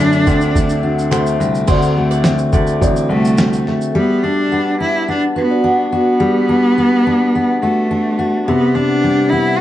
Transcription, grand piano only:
0.00 0.21 F#2 medium
0.27 1.08 D2 medium
1.11 1.34 D2 loud
1.40 1.63 C2 medium
1.68 2.36 D2 loud
2.53 2.81 D2 medium
2.81 3.05 A1 medium
3.09 3.56 C2 medium

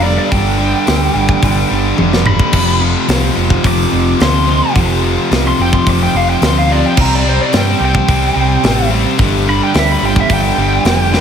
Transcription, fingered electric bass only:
0.00 0.17 F1 loud
0.32 0.72 G1 loud
0.88 1.08 D2 medium
1.15 1.35 G1 loud
1.43 1.63 G1 loud
1.71 1.91 G1 medium
1.98 2.39 F1 loud
2.53 2.94 F1 medium
3.08 3.29 C2 loud
3.37 3.57 F1 loud
3.64 3.84 F1 loud
3.92 4.13 F1 medium
4.20 4.60 D2 loud
4.75 5.16 F1 loud
5.31 5.51 C2 medium
5.59 5.79 F1 loud
5.86 6.06 F1 loud
6.13 6.34 F1 medium
6.41 6.82 D2 loud
6.97 7.38 C2 loud
7.53 7.73 G2 medium
7.80 8.00 C2 loud
8.08 8.28 C2 loud
8.35 8.56 C2 medium
8.64 9.04 A1 loud
9.19 9.59 G1 loud
9.75 9.94 D2 medium
10.02 10.22 G1 loud
10.30 10.50 G1 loud
10.57 10.77 G1 medium
10.85 11.21 F1 loud

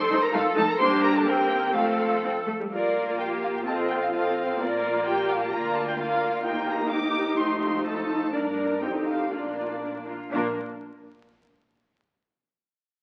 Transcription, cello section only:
0.00 0.32 A4 loud
0.33 0.79 A4 medium
0.80 1.27 G4 medium
1.27 1.75 A#4 medium
1.75 2.46 A4 medium
2.72 3.16 A#4 medium
3.20 3.65 G4 medium
3.67 4.59 F4 medium
4.60 5.05 A#4 medium
5.07 5.51 G4 medium
5.53 6.93 F4 medium
6.92 7.86 G4 medium
7.86 8.32 A4 medium
8.34 8.81 A#4 medium
8.82 9.32 G4 soft
9.32 9.77 F4 soft
9.81 10.05 D4 soft
10.08 10.32 F4 soft
10.32 10.60 A#2 medium

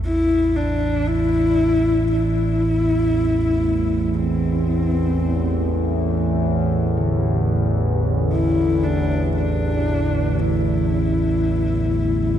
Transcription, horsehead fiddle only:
0.05 0.58 E4 loud
0.56 1.09 D4 medium
1.08 2.11 E4 loud
2.11 4.19 E4 medium
4.18 6.25 C4 medium
8.32 8.85 E4 loud
8.84 9.35 D4 medium
9.36 10.41 D4 medium
10.39 12.39 E4 medium

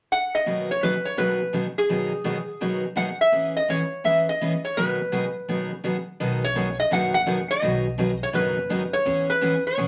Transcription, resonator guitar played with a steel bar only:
0.12 0.33 F#5 medium
0.35 0.68 D#5 medium
0.71 0.82 C#5 medium
0.83 1.06 B4 medium
1.05 1.18 C#5 medium
1.18 1.54 B4 medium
1.78 2.81 G#4 medium
2.97 3.21 F#5 medium
3.21 3.54 E5 loud
3.56 3.68 D#5 medium
3.70 4.03 C#5 medium
4.05 4.29 E5 medium
4.29 4.64 D#5 medium
4.65 4.77 C#5 medium
4.77 5.80 B4 medium
6.44 6.79 C#5 loud
6.80 6.91 D#5 medium
6.93 7.13 F#5 loud
7.14 7.48 F#5 loud
7.51 8.23 D#5 loud
8.23 8.28 C#5 medium
8.35 8.96 B4 medium
8.93 9.30 C#5 medium
9.30 9.63 B4 loud
9.67 9.88 C#5 medium

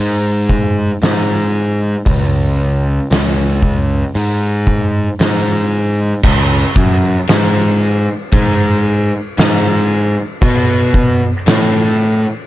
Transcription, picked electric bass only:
0.00 0.90 G#2 medium
1.03 1.94 G#2 medium
2.06 2.98 C#2 loud
3.11 4.03 C#2 medium
4.15 5.07 G#2 medium
5.20 6.12 G#2 medium
6.24 6.63 C#2 loud
6.76 7.15 F#2 medium
7.29 8.07 G#2 medium
8.33 9.10 G#2 loud
9.38 10.16 G#2 medium
10.42 11.20 B2 loud
11.47 12.24 A2 medium

